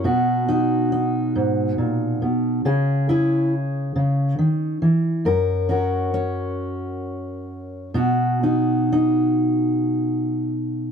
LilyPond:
\new Staff \with { instrumentName = "Steel-string acoustic guitar" } { \time 6/8 \key b \major \tempo 4. = 46 << { <fis fis'>8 <dis' fis'>8 dis'2 | gis'8 <e' gis'>2~ <e' gis'>8 | ais'8 <cis' fis' ais'>8 cis'2 | fis'8 <dis' fis'>8 dis'2 | } \\ { b,4. gis,8 ais,8 b,8 | cis4. cis8 dis8 e8 | fis,2. | b,2. | } >> }